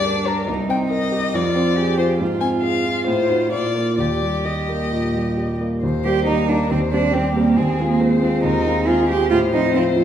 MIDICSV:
0, 0, Header, 1, 4, 480
1, 0, Start_track
1, 0, Key_signature, -3, "major"
1, 0, Tempo, 430108
1, 538, Time_signature, 4, 2, 24, 8
1, 3428, Tempo, 459418
1, 6308, Tempo, 434468
1, 10963, End_track
2, 0, Start_track
2, 0, Title_t, "Violin"
2, 0, Program_c, 0, 40
2, 0, Note_on_c, 0, 74, 87
2, 302, Note_on_c, 0, 70, 62
2, 319, Note_off_c, 0, 74, 0
2, 538, Note_off_c, 0, 70, 0
2, 779, Note_on_c, 0, 79, 64
2, 868, Note_off_c, 0, 79, 0
2, 1015, Note_on_c, 0, 75, 72
2, 1505, Note_on_c, 0, 74, 79
2, 1521, Note_off_c, 0, 75, 0
2, 2209, Note_off_c, 0, 74, 0
2, 2216, Note_on_c, 0, 72, 57
2, 2305, Note_off_c, 0, 72, 0
2, 2686, Note_on_c, 0, 80, 64
2, 2775, Note_off_c, 0, 80, 0
2, 2930, Note_on_c, 0, 77, 64
2, 3414, Note_off_c, 0, 77, 0
2, 3428, Note_on_c, 0, 72, 66
2, 3891, Note_off_c, 0, 72, 0
2, 3904, Note_on_c, 0, 74, 67
2, 4373, Note_off_c, 0, 74, 0
2, 4379, Note_on_c, 0, 74, 63
2, 4868, Note_on_c, 0, 75, 49
2, 4884, Note_off_c, 0, 74, 0
2, 6070, Note_off_c, 0, 75, 0
2, 6310, Note_on_c, 0, 72, 57
2, 6790, Note_on_c, 0, 70, 46
2, 6806, Note_off_c, 0, 72, 0
2, 7272, Note_on_c, 0, 72, 58
2, 7288, Note_off_c, 0, 70, 0
2, 7744, Note_off_c, 0, 72, 0
2, 7751, Note_on_c, 0, 67, 55
2, 8224, Note_on_c, 0, 68, 51
2, 8240, Note_off_c, 0, 67, 0
2, 8706, Note_on_c, 0, 72, 56
2, 8723, Note_off_c, 0, 68, 0
2, 9189, Note_off_c, 0, 72, 0
2, 9196, Note_on_c, 0, 70, 69
2, 9665, Note_off_c, 0, 70, 0
2, 9676, Note_on_c, 0, 68, 56
2, 10144, Note_off_c, 0, 68, 0
2, 10156, Note_on_c, 0, 72, 70
2, 10963, Note_off_c, 0, 72, 0
2, 10963, End_track
3, 0, Start_track
3, 0, Title_t, "Cello"
3, 0, Program_c, 1, 42
3, 61, Note_on_c, 1, 62, 52
3, 526, Note_off_c, 1, 62, 0
3, 539, Note_on_c, 1, 63, 54
3, 1490, Note_on_c, 1, 65, 55
3, 1507, Note_off_c, 1, 63, 0
3, 1972, Note_on_c, 1, 67, 64
3, 1988, Note_off_c, 1, 65, 0
3, 2449, Note_off_c, 1, 67, 0
3, 2456, Note_on_c, 1, 65, 55
3, 3870, Note_off_c, 1, 65, 0
3, 3900, Note_on_c, 1, 65, 50
3, 4385, Note_on_c, 1, 67, 48
3, 4401, Note_off_c, 1, 65, 0
3, 6071, Note_off_c, 1, 67, 0
3, 6547, Note_on_c, 1, 67, 71
3, 6774, Note_off_c, 1, 67, 0
3, 6786, Note_on_c, 1, 63, 71
3, 7036, Note_on_c, 1, 62, 64
3, 7052, Note_off_c, 1, 63, 0
3, 7276, Note_off_c, 1, 62, 0
3, 7282, Note_on_c, 1, 60, 73
3, 7371, Note_off_c, 1, 60, 0
3, 7516, Note_on_c, 1, 62, 66
3, 7752, Note_on_c, 1, 60, 72
3, 7769, Note_off_c, 1, 62, 0
3, 7993, Note_off_c, 1, 60, 0
3, 7998, Note_on_c, 1, 58, 66
3, 8233, Note_on_c, 1, 60, 67
3, 8250, Note_off_c, 1, 58, 0
3, 8586, Note_off_c, 1, 60, 0
3, 8593, Note_on_c, 1, 58, 62
3, 8948, Note_off_c, 1, 58, 0
3, 8957, Note_on_c, 1, 60, 61
3, 9192, Note_off_c, 1, 60, 0
3, 9199, Note_on_c, 1, 63, 66
3, 9681, Note_on_c, 1, 65, 69
3, 9697, Note_off_c, 1, 63, 0
3, 9911, Note_off_c, 1, 65, 0
3, 9917, Note_on_c, 1, 67, 73
3, 10141, Note_off_c, 1, 67, 0
3, 10147, Note_on_c, 1, 65, 83
3, 10236, Note_off_c, 1, 65, 0
3, 10400, Note_on_c, 1, 63, 76
3, 10630, Note_off_c, 1, 63, 0
3, 10638, Note_on_c, 1, 60, 77
3, 10727, Note_off_c, 1, 60, 0
3, 10870, Note_on_c, 1, 57, 65
3, 10963, Note_off_c, 1, 57, 0
3, 10963, End_track
4, 0, Start_track
4, 0, Title_t, "Grand piano"
4, 0, Program_c, 2, 0
4, 0, Control_c, 2, 64, 127
4, 0, Note_on_c, 2, 43, 55
4, 0, Note_on_c, 2, 62, 41
4, 59, Note_on_c, 2, 70, 37
4, 210, Note_off_c, 2, 62, 0
4, 293, Note_on_c, 2, 67, 37
4, 440, Note_off_c, 2, 70, 0
4, 510, Note_off_c, 2, 43, 0
4, 533, Note_off_c, 2, 67, 0
4, 533, Note_on_c, 2, 36, 47
4, 558, Control_c, 2, 64, 0
4, 755, Control_c, 2, 64, 127
4, 767, Note_on_c, 2, 60, 42
4, 1009, Note_on_c, 2, 70, 46
4, 1155, Note_off_c, 2, 60, 0
4, 1249, Note_on_c, 2, 67, 42
4, 1396, Note_off_c, 2, 70, 0
4, 1464, Note_off_c, 2, 36, 0
4, 1493, Note_off_c, 2, 67, 0
4, 1493, Note_on_c, 2, 41, 59
4, 1518, Control_c, 2, 64, 0
4, 1699, Control_c, 2, 64, 127
4, 1733, Note_on_c, 2, 60, 44
4, 1974, Note_on_c, 2, 68, 47
4, 2122, Note_off_c, 2, 60, 0
4, 2212, Note_on_c, 2, 65, 41
4, 2363, Note_off_c, 2, 68, 0
4, 2432, Note_off_c, 2, 41, 0
4, 2452, Note_on_c, 2, 44, 50
4, 2458, Note_off_c, 2, 65, 0
4, 2484, Control_c, 2, 64, 0
4, 2674, Control_c, 2, 64, 127
4, 2690, Note_on_c, 2, 60, 37
4, 2927, Note_on_c, 2, 68, 41
4, 3078, Note_off_c, 2, 60, 0
4, 3172, Note_on_c, 2, 65, 44
4, 3322, Note_off_c, 2, 68, 0
4, 3394, Note_off_c, 2, 44, 0
4, 3421, Note_on_c, 2, 45, 52
4, 3424, Note_off_c, 2, 65, 0
4, 3451, Control_c, 2, 64, 0
4, 3637, Control_c, 2, 64, 127
4, 3658, Note_on_c, 2, 63, 34
4, 3660, Note_on_c, 2, 66, 35
4, 3874, Note_off_c, 2, 63, 0
4, 3875, Note_off_c, 2, 66, 0
4, 3883, Note_off_c, 2, 45, 0
4, 3899, Note_on_c, 2, 46, 43
4, 3920, Control_c, 2, 64, 0
4, 4099, Control_c, 2, 64, 127
4, 4132, Note_on_c, 2, 58, 29
4, 4138, Note_on_c, 2, 65, 33
4, 4356, Note_off_c, 2, 58, 0
4, 4359, Note_off_c, 2, 65, 0
4, 4369, Note_off_c, 2, 46, 0
4, 4378, Note_on_c, 2, 39, 40
4, 4407, Control_c, 2, 64, 0
4, 4624, Control_c, 2, 64, 127
4, 4626, Note_on_c, 2, 55, 30
4, 4872, Note_on_c, 2, 67, 39
4, 5013, Note_off_c, 2, 55, 0
4, 5115, Note_on_c, 2, 58, 36
4, 5255, Note_off_c, 2, 67, 0
4, 5318, Note_off_c, 2, 39, 0
4, 5352, Note_on_c, 2, 46, 36
4, 5496, Note_off_c, 2, 58, 0
4, 5589, Note_on_c, 2, 55, 35
4, 5736, Note_off_c, 2, 46, 0
4, 5834, Note_on_c, 2, 67, 33
4, 5974, Note_off_c, 2, 55, 0
4, 6072, Note_on_c, 2, 58, 33
4, 6216, Note_off_c, 2, 67, 0
4, 6308, Note_off_c, 2, 58, 0
4, 6309, Note_on_c, 2, 39, 47
4, 6327, Control_c, 2, 64, 0
4, 6537, Control_c, 2, 64, 127
4, 6545, Note_off_c, 2, 39, 0
4, 6554, Note_on_c, 2, 55, 39
4, 6559, Note_on_c, 2, 58, 34
4, 6559, Note_on_c, 2, 67, 41
4, 6771, Note_off_c, 2, 55, 0
4, 6773, Note_off_c, 2, 67, 0
4, 6774, Note_off_c, 2, 58, 0
4, 6796, Note_on_c, 2, 55, 39
4, 6799, Note_on_c, 2, 58, 36
4, 6805, Note_on_c, 2, 67, 39
4, 7012, Note_off_c, 2, 55, 0
4, 7014, Note_off_c, 2, 58, 0
4, 7017, Note_off_c, 2, 67, 0
4, 7040, Note_on_c, 2, 55, 39
4, 7048, Note_on_c, 2, 58, 40
4, 7052, Note_on_c, 2, 67, 41
4, 7255, Note_off_c, 2, 55, 0
4, 7259, Note_off_c, 2, 58, 0
4, 7261, Note_off_c, 2, 67, 0
4, 7284, Note_on_c, 2, 39, 50
4, 7298, Control_c, 2, 64, 0
4, 7514, Note_off_c, 2, 39, 0
4, 7515, Control_c, 2, 64, 127
4, 7524, Note_on_c, 2, 55, 37
4, 7529, Note_on_c, 2, 60, 39
4, 7532, Note_on_c, 2, 67, 43
4, 7738, Note_off_c, 2, 55, 0
4, 7740, Note_off_c, 2, 60, 0
4, 7742, Note_off_c, 2, 67, 0
4, 7764, Note_on_c, 2, 55, 38
4, 7768, Note_on_c, 2, 60, 34
4, 7771, Note_on_c, 2, 67, 41
4, 7975, Note_off_c, 2, 55, 0
4, 7977, Note_off_c, 2, 60, 0
4, 7979, Note_off_c, 2, 67, 0
4, 8003, Note_on_c, 2, 55, 36
4, 8010, Note_on_c, 2, 60, 37
4, 8013, Note_on_c, 2, 67, 39
4, 8212, Note_off_c, 2, 55, 0
4, 8216, Note_off_c, 2, 60, 0
4, 8218, Note_off_c, 2, 67, 0
4, 8235, Note_on_c, 2, 39, 51
4, 8251, Control_c, 2, 64, 0
4, 8431, Control_c, 2, 64, 127
4, 8465, Note_off_c, 2, 39, 0
4, 8481, Note_on_c, 2, 56, 40
4, 8487, Note_on_c, 2, 60, 39
4, 8487, Note_on_c, 2, 65, 45
4, 8693, Note_off_c, 2, 56, 0
4, 8696, Note_off_c, 2, 65, 0
4, 8697, Note_off_c, 2, 60, 0
4, 8717, Note_on_c, 2, 56, 39
4, 8724, Note_on_c, 2, 60, 36
4, 8724, Note_on_c, 2, 65, 44
4, 8933, Note_off_c, 2, 56, 0
4, 8936, Note_off_c, 2, 60, 0
4, 8936, Note_off_c, 2, 65, 0
4, 8959, Note_on_c, 2, 56, 45
4, 8962, Note_on_c, 2, 60, 42
4, 8963, Note_on_c, 2, 65, 46
4, 9174, Note_off_c, 2, 56, 0
4, 9175, Note_off_c, 2, 60, 0
4, 9176, Note_off_c, 2, 65, 0
4, 9197, Note_on_c, 2, 39, 51
4, 9429, Note_off_c, 2, 39, 0
4, 9443, Note_on_c, 2, 56, 43
4, 9449, Note_on_c, 2, 60, 45
4, 9454, Note_on_c, 2, 65, 42
4, 9654, Note_off_c, 2, 56, 0
4, 9657, Note_off_c, 2, 60, 0
4, 9661, Note_off_c, 2, 65, 0
4, 9675, Note_on_c, 2, 56, 40
4, 9678, Note_on_c, 2, 60, 42
4, 9684, Note_on_c, 2, 65, 41
4, 9890, Note_off_c, 2, 56, 0
4, 9891, Note_off_c, 2, 60, 0
4, 9894, Note_off_c, 2, 65, 0
4, 9918, Note_on_c, 2, 56, 39
4, 9923, Note_on_c, 2, 60, 37
4, 9928, Note_on_c, 2, 65, 46
4, 10131, Note_off_c, 2, 56, 0
4, 10134, Note_off_c, 2, 60, 0
4, 10137, Note_off_c, 2, 65, 0
4, 10156, Note_on_c, 2, 45, 56
4, 10176, Control_c, 2, 64, 0
4, 10377, Control_c, 2, 64, 127
4, 10387, Note_off_c, 2, 45, 0
4, 10399, Note_on_c, 2, 53, 44
4, 10402, Note_on_c, 2, 60, 44
4, 10408, Note_on_c, 2, 65, 43
4, 10611, Note_off_c, 2, 53, 0
4, 10613, Note_off_c, 2, 60, 0
4, 10616, Note_off_c, 2, 65, 0
4, 10641, Note_on_c, 2, 53, 39
4, 10648, Note_on_c, 2, 60, 43
4, 10651, Note_on_c, 2, 65, 52
4, 10850, Note_off_c, 2, 53, 0
4, 10854, Note_off_c, 2, 60, 0
4, 10856, Note_off_c, 2, 65, 0
4, 10876, Note_on_c, 2, 53, 47
4, 10880, Note_on_c, 2, 60, 49
4, 10887, Note_on_c, 2, 65, 48
4, 10963, Note_off_c, 2, 53, 0
4, 10963, Note_off_c, 2, 60, 0
4, 10963, Note_off_c, 2, 65, 0
4, 10963, End_track
0, 0, End_of_file